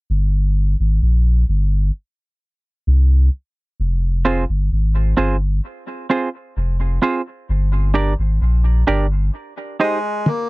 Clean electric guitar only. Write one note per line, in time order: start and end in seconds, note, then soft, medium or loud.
4.25 4.43 C4 medium
4.25 4.43 F4 medium
4.25 4.44 G#4 medium
4.25 4.44 C5 medium
5.17 5.35 C4 medium
5.17 5.36 F4 medium
5.17 5.36 G#4 medium
5.17 5.36 C5 medium
6.10 6.28 C4 medium
6.10 6.28 F4 medium
6.10 6.29 G#4 medium
6.10 6.29 C5 medium
7.02 7.20 C4 medium
7.02 7.21 F4 medium
7.02 7.21 G#4 medium
7.02 7.21 C5 medium
7.94 8.13 D4 medium
7.94 8.13 G4 medium
7.94 8.13 A#4 medium
7.94 8.13 D5 medium
8.87 9.05 D4 medium
8.87 9.06 G4 medium
8.87 9.06 A#4 medium
8.87 9.06 D5 medium
9.80 9.98 D#4 medium
9.80 9.98 G4 medium
9.80 9.98 C5 medium
9.80 9.99 D#5 medium